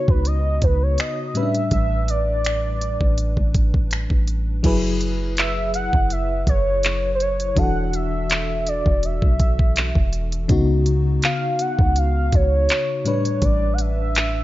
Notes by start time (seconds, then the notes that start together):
Already playing: C#3 B3 D#4 F#4 C#5
0.08 C#2 B4, kick
0.25 D#5, closed hi-hat
0.62 C#2 B4, kick, closed hi-hat
0.83 C#5
0.98 D#5, finger snap, closed hi-hat
1.34 A2 G3 C#4 B4 E5, closed hi-hat
1.43 D4
1.55 closed hi-hat
1.71 A1 E5, kick, closed hi-hat
2.08 D5, closed hi-hat
2.45 finger snap, closed hi-hat
2.81 closed hi-hat
3.01 A1, kick
3.18 closed hi-hat
3.37 A1, kick
3.54 kick, closed hi-hat
3.74 kick
3.91 finger snap, closed hi-hat
4.10 A1, kick
4.28 closed hi-hat
4.63 F#1 F#3 E4 G#4 B4, kick, closed hi-hat, crash
5.01 closed hi-hat
5.37 E5, clap, closed hi-hat
5.74 F#5, closed hi-hat
5.93 F#1, kick
6.10 E5, closed hi-hat
6.47 F#1 C#5, kick, closed hi-hat
6.83 clap, closed hi-hat
7.15 C5
7.20 C#5, closed hi-hat
7.40 closed hi-hat
7.55 E1 E3 D4 F#4 A4 F#5, kick, closed hi-hat
7.93 E5, closed hi-hat
8.30 clap, closed hi-hat
8.67 D5, closed hi-hat
8.86 E1, kick
9.03 E5, closed hi-hat
9.22 B1, kick
9.40 kick, closed hi-hat
9.59 kick
9.76 clap, closed hi-hat
9.95 E1, kick
10.13 closed hi-hat
10.32 closed hi-hat
10.48 C#2 C#3 B3 D#4 F#4, kick, closed hi-hat
10.86 closed hi-hat
11.22 F5, clap, closed hi-hat
11.59 F#5, closed hi-hat
11.79 C#2, kick
11.96 F5, closed hi-hat
12.32 C#2 C#5, kick, closed hi-hat
12.69 clap, closed hi-hat
13.05 A2 G3 D4 B4 C#5, closed hi-hat
13.25 closed hi-hat
13.42 A1 D5, kick, closed hi-hat
13.74 F#5
13.78 E5, closed hi-hat
14.15 clap, closed hi-hat